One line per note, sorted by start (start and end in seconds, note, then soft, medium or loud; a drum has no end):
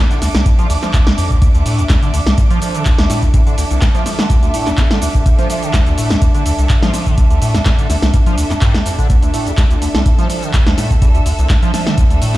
0.00 12.38 D4 medium
0.00 12.38 A4 medium
0.00 12.38 E5 medium
0.00 10.17 D6 medium
0.11 0.20 D3 medium
0.11 closed hi-hat soft
0.11 shaker soft
0.22 0.29 D2 medium
0.22 snare soft
0.22 open hi-hat loud
0.22 shaker medium
0.35 0.44 C2 medium
0.35 snare medium
0.35 shaker soft
0.46 0.50 G2 medium
0.46 kick loud
0.46 closed hi-hat medium
0.46 shaker soft
0.59 0.68 F3 loud
0.59 closed hi-hat soft
0.59 shaker soft
0.70 0.77 D2 medium
0.70 open hi-hat loud
0.70 shaker medium
0.82 0.92 F3 medium
0.82 snare soft
0.82 clap soft
0.82 closed hi-hat soft
0.82 shaker soft
0.94 1.01 D2 medium
0.94 kick loud
0.94 clap loud
0.94 closed hi-hat medium
0.94 shaker soft
1.07 1.13 C2 medium
1.07 snare medium
1.07 closed hi-hat soft
1.07 shaker soft
1.18 1.32 F2 medium
1.18 open hi-hat loud
1.18 shaker medium
1.31 1.40 D2 medium
1.31 kick medium
1.31 closed hi-hat soft
1.31 shaker soft
1.42 1.49 D2 medium
1.42 kick loud
1.42 closed hi-hat medium
1.42 shaker soft
1.55 1.64 D2 medium
1.55 closed hi-hat soft
1.55 shaker soft
1.66 1.80 A2 medium
1.66 open hi-hat loud
1.66 shaker medium
1.79 1.85 D2 loud
1.79 closed hi-hat soft
1.79 shaker soft
1.89 1.97 E2 medium
1.89 kick loud
1.89 snare medium
1.89 clap loud
1.89 closed hi-hat medium
1.89 shaker soft
2.03 2.12 D3 medium
2.03 closed hi-hat soft
2.03 shaker soft
2.14 2.21 D2 medium
2.14 open hi-hat loud
2.14 shaker medium
2.26 2.36 C2 medium
2.26 snare medium
2.26 shaker soft
2.38 2.42 G2 medium
2.38 kick loud
2.38 closed hi-hat medium
2.38 shaker soft
2.50 2.60 F3 loud
2.50 closed hi-hat soft
2.50 shaker soft
2.62 2.76 F3 medium
2.62 open hi-hat loud
2.62 shaker medium
2.74 2.84 D3 medium
2.74 closed hi-hat soft
2.74 shaker soft
2.85 2.93 D2 medium
2.85 kick loud
2.85 clap loud
2.85 closed hi-hat medium
2.85 shaker soft
2.99 3.08 D2 medium
2.99 snare medium
2.99 closed hi-hat soft
2.99 shaker soft
3.10 3.24 A2 medium
3.10 snare soft
3.10 open hi-hat loud
3.10 shaker medium
3.23 3.29 D2 loud
3.23 kick medium
3.23 closed hi-hat soft
3.23 shaker soft
3.34 3.41 E2 medium
3.34 kick loud
3.34 closed hi-hat loud
3.34 shaker soft
3.47 3.56 D3 medium
3.47 closed hi-hat soft
3.47 shaker soft
3.58 3.65 D2 medium
3.58 open hi-hat loud
3.58 shaker medium
3.71 3.80 C2 medium
3.71 closed hi-hat soft
3.71 shaker soft
3.82 3.86 G2 medium
3.82 kick loud
3.82 snare medium
3.82 clap loud
3.82 closed hi-hat medium
3.82 shaker soft
3.95 4.04 F3 loud
3.95 closed hi-hat soft
3.95 shaker soft
4.06 4.20 F3 medium
4.06 snare soft
4.06 open hi-hat loud
4.06 shaker medium
4.19 4.28 D3 medium
4.19 snare medium
4.19 shaker soft
4.30 4.37 D2 medium
4.30 kick loud
4.30 closed hi-hat medium
4.30 shaker soft
4.43 4.52 D2 medium
4.43 closed hi-hat soft
4.43 shaker soft
4.54 4.68 A2 medium
4.54 open hi-hat loud
4.54 shaker medium
4.67 4.73 D2 loud
4.67 snare soft
4.67 clap soft
4.67 closed hi-hat soft
4.67 shaker soft
4.78 4.85 E2 medium
4.78 kick loud
4.78 clap loud
4.78 closed hi-hat medium
4.78 shaker soft
4.91 5.00 D3 medium
4.91 snare medium
4.91 closed hi-hat soft
4.91 shaker soft
5.02 5.09 D2 medium
5.02 open hi-hat loud
5.02 shaker medium
5.15 5.24 C2 medium
5.15 kick medium
5.15 closed hi-hat soft
5.15 shaker soft
5.26 5.30 G2 medium
5.26 kick loud
5.26 closed hi-hat loud
5.26 shaker soft
5.39 5.48 F3 loud
5.39 closed hi-hat soft
5.39 shaker soft
5.50 5.64 F3 medium
5.50 open hi-hat loud
5.50 shaker medium
5.63 5.72 D3 medium
5.63 closed hi-hat soft
5.63 shaker soft
5.74 5.81 D2 medium
5.74 kick loud
5.74 snare medium
5.74 clap loud
5.74 closed hi-hat loud
5.74 shaker soft
5.87 5.96 D2 medium
5.87 closed hi-hat soft
5.87 shaker soft
5.98 6.12 A2 medium
5.98 open hi-hat loud
5.98 shaker medium
6.10 6.17 D2 loud
6.10 snare medium
6.10 shaker soft
6.22 6.29 E2 medium
6.22 kick loud
6.22 closed hi-hat medium
6.22 shaker soft
6.35 6.44 D3 medium
6.35 closed hi-hat soft
6.35 shaker soft
6.46 6.53 D2 medium
6.46 open hi-hat loud
6.46 shaker medium
6.58 6.68 C2 medium
6.58 closed hi-hat soft
6.58 shaker soft
6.69 6.74 G2 medium
6.69 kick loud
6.69 clap loud
6.69 closed hi-hat loud
6.69 shaker soft
6.82 6.92 F3 loud
6.82 snare medium
6.82 closed hi-hat soft
6.82 shaker soft
6.94 7.08 F3 medium
6.94 snare soft
6.94 open hi-hat loud
6.94 shaker medium
7.06 7.16 D3 medium
7.06 kick medium
7.06 closed hi-hat soft
7.06 shaker soft
7.18 7.25 D2 medium
7.18 kick loud
7.18 closed hi-hat medium
7.18 shaker soft
7.30 7.40 D2 medium
7.30 closed hi-hat soft
7.30 shaker soft
7.42 7.56 A2 medium
7.42 open hi-hat loud
7.42 shaker medium
7.54 7.61 D2 loud
7.54 snare medium
7.54 closed hi-hat soft
7.54 shaker soft
7.66 7.73 E2 medium
7.66 kick loud
7.66 snare medium
7.66 clap loud
7.66 closed hi-hat loud
7.66 shaker soft
7.78 7.88 D3 medium
7.78 closed hi-hat soft
7.78 shaker soft
7.90 7.97 D2 medium
7.90 snare soft
7.90 open hi-hat loud
7.90 shaker medium
8.02 8.12 C2 medium
8.02 snare medium
8.02 closed hi-hat soft
8.02 shaker soft
8.14 8.18 G2 medium
8.14 kick loud
8.14 closed hi-hat medium
8.14 shaker soft
8.26 8.36 F3 medium
8.26 closed hi-hat soft
8.26 shaker soft
8.38 8.45 D2 medium
8.38 open hi-hat loud
8.38 shaker medium
8.50 8.54 F2 medium
8.50 snare soft
8.50 clap soft
8.50 closed hi-hat soft
8.50 shaker soft
8.61 8.76 G2 loud
8.61 kick loud
8.61 clap loud
8.61 closed hi-hat loud
8.61 shaker soft
8.74 8.81 D2 medium
8.74 snare medium
8.74 closed hi-hat soft
8.74 shaker soft
8.86 8.96 F2 medium
8.86 open hi-hat loud
8.86 shaker medium
8.98 9.08 D3 loud
8.98 kick medium
8.98 closed hi-hat soft
8.98 shaker soft
9.10 9.17 D2 medium
9.10 kick loud
9.10 closed hi-hat medium
9.10 shaker soft
9.22 9.32 D2 medium
9.22 closed hi-hat soft
9.22 shaker soft
9.34 9.48 A2 medium
9.34 open hi-hat loud
9.34 shaker medium
9.46 9.53 D2 loud
9.46 closed hi-hat soft
9.46 shaker soft
9.58 9.65 E2 medium
9.58 kick loud
9.58 snare medium
9.58 clap loud
9.58 closed hi-hat loud
9.58 shaker soft
9.70 9.77 D2 medium
9.70 closed hi-hat soft
9.70 shaker soft
9.82 9.89 D2 medium
9.82 open hi-hat loud
9.82 shaker medium
9.95 10.04 C2 medium
9.95 snare medium
9.95 closed hi-hat soft
9.95 shaker soft
10.02 10.10 G2 medium
10.02 12.38 E6 medium
10.02 kick loud
10.02 closed hi-hat loud
10.02 shaker soft
10.18 10.28 F3 loud
10.18 closed hi-hat soft
10.18 shaker soft
10.30 10.44 F3 medium
10.30 open hi-hat loud
10.30 shaker medium
10.43 10.52 D3 medium
10.43 closed hi-hat soft
10.43 shaker soft
10.54 10.61 D2 medium
10.54 kick loud
10.54 clap loud
10.54 closed hi-hat loud
10.54 shaker soft
10.66 10.76 D2 medium
10.66 snare medium
10.66 closed hi-hat soft
10.66 shaker soft
10.78 10.92 A2 medium
10.78 snare soft
10.78 open hi-hat loud
10.78 shaker medium
10.90 10.97 D2 loud
10.90 kick medium
10.90 closed hi-hat soft
10.90 shaker soft
11.02 11.09 E2 medium
11.02 kick loud
11.02 closed hi-hat loud
11.02 shaker soft
11.15 11.21 D2 medium
11.15 closed hi-hat soft
11.15 shaker soft
11.26 11.33 D2 medium
11.26 open hi-hat loud
11.26 shaker medium
11.39 11.48 C2 medium
11.39 closed hi-hat soft
11.39 shaker soft
11.50 11.54 G2 medium
11.50 kick loud
11.50 snare medium
11.50 clap loud
11.50 closed hi-hat loud
11.50 shaker soft
11.62 11.72 F3 loud
11.62 closed hi-hat soft
11.62 shaker soft
11.74 11.88 F3 medium
11.74 snare soft
11.74 open hi-hat loud
11.74 shaker medium
11.87 11.96 D3 medium
11.87 snare medium
11.87 closed hi-hat soft
11.87 shaker soft
11.98 12.05 D2 medium
11.98 kick loud
11.98 closed hi-hat medium
11.98 shaker soft
12.10 12.20 D2 medium
12.10 closed hi-hat soft
12.10 shaker soft
12.22 12.36 A2 medium
12.22 open hi-hat loud
12.22 shaker medium
12.34 clap soft